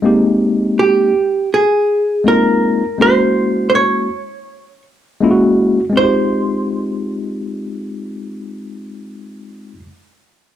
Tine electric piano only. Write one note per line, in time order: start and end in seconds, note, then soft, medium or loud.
0.02 1.11 G#3 medium
0.02 1.12 A#3 medium
0.02 1.12 C4 medium
0.02 1.13 D#4 medium
0.02 1.13 G4 loud
2.24 2.82 G#3 medium
2.24 2.83 A#3 medium
2.24 2.83 C4 medium
2.24 2.84 D#4 medium
2.24 2.84 F4 medium
2.98 4.07 G#3 medium
2.98 4.08 A#3 medium
2.98 4.08 C#4 medium
2.98 4.09 E4 medium
2.98 4.09 F#4 medium
5.21 5.79 G#3 medium
5.21 5.79 A#3 medium
5.21 5.80 C#4 medium
5.21 5.80 E4 medium
5.21 5.31 F4 medium
5.31 5.84 F#4 loud
5.90 9.72 G#3 medium
5.90 9.75 C4 medium
5.96 9.78 D#4 medium
5.96 9.82 F4 medium
6.03 9.85 G4 medium